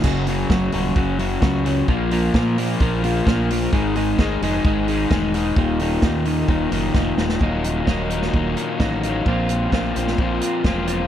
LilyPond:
<<
  \new Staff \with { instrumentName = "Overdriven electric guitar" } { \clef bass \time 4/4 \key ees \dorian \tempo 4 = 130 <ges, des ges>8 <ges, des ges>8 <ges, des ges>8 <ges, des ges>8 <ges, des ges>8 <ges, des ges>8 <ges, des ges>8 <ges, des ges>8 | <bes, f bes>8 <bes, f bes>8 <bes, f bes>8 <bes, f bes>8 <bes, f bes>8 <bes, f bes>8 <bes, f bes>8 <bes, f bes>8 | <aes, ees aes>8 <aes, ees aes>8 <aes, ees aes>8 <aes, ees aes>8 <aes, ees aes>8 <aes, ees aes>8 <aes, ees aes>8 <aes, ees aes>8 | <ees, bes, ees>8 <ees, bes, ees>8 <ees, bes, ees>8 <ees, bes, ees>8 <ees, bes, ees>8 <ees, bes, ees>8 <ees, bes, ees>8 <ees, bes, ees>8 |
<ees, bes, ees ges bes ees'>8 <ees ges bes ees'>8 <ees ges bes ees'>8 <ees ges bes ees'>8 <ees, bes, ees ges bes ees'>4 <ees ges bes ees'>8 <ees ges bes ees'>8 | <bes, f bes c' f'>8 <bes c' f'>8 <f bes c' f'>8 <bes c' f'>8 <bes, f bes c' f'>4 <f bes c' f'>8 <bes c' f'>8 | }
  \new Staff \with { instrumentName = "Clean electric guitar" } { \clef bass \time 4/4 \key ees \dorian <ges, des ges>8 <ges, des ges>8 <ges, des ges>8 <ges, des ges>8 <ges, des ges>8 <ges, des ges>8 <ges, des ges>8 <ges, des ges>8 | <bes, f bes>8 <bes, f bes>8 <bes, f bes>8 <bes, f bes>8 <bes, f bes>8 <bes, f bes>8 <bes, f bes>8 <bes, f bes>8 | <aes, ees aes>8 <aes, ees aes>8 <aes, ees aes>8 <aes, ees aes>8 <aes, ees aes>8 <aes, ees aes>8 <aes, ees aes>8 <aes, ees aes>8 | <ees, bes, ees>8 <ees, bes, ees>8 <ees, bes, ees>8 <ees, bes, ees>8 <ees, bes, ees>8 <ees, bes, ees>8 <ees, bes, ees>8 <ees, bes, ees>8 |
<ees, bes, ees ges bes ees'>4 <ees, bes, ees ges bes ees'>4. <ees ges bes ees'>8 <ees ges bes ees'>8 <ees ges bes ees'>8 | <bes, f bes c' f'>4 <bes, f bes c' f'>4. <bes c' f'>8 <f bes c' f'>8 <bes c' f'>8 | }
  \new Staff \with { instrumentName = "Fingered electric bass" } { \clef bass \time 4/4 \key ees \dorian ges,,4 ges,,8 ees,,8 ges,,4 des,4 | bes,,4 bes,4 bes,,4 bes,,4 | aes,,4 aes,,8 f,,8 aes,,4 fes,,4 | ees,,4 ees,4 ees,,8 ges,,8 f,,8 ees,,8 |
ees,,4 ees,,4 ees,,8 r8 a,,4 | bes,,4 bes,,8 bes,,8 bes,,8 r8 fes,,4 | }
  \new DrumStaff \with { instrumentName = "Drums" } \drummode { \time 4/4 <cymc bd>8 hho8 <bd sn>8 hho8 bd8 hho8 <bd sn>8 <hho sn>8 | bd8 hho8 <bd sn>8 hho8 bd8 hho8 <bd sn>8 <hho sn>8 | bd8 hho8 <bd sn>8 hho8 bd8 hho8 <bd sn>8 <hho sn>8 | bd8 hho8 <bd sn>8 hho8 bd8 hho8 <bd sn>8 sn16 sn16 |
bd8 hh8 <bd sn>8 hh16 sn16 bd8 hh8 <bd sn>8 <hh sn>8 | bd8 hh8 <bd sn>8 hh16 sn16 bd8 hh8 <bd sn>8 hh8 | }
>>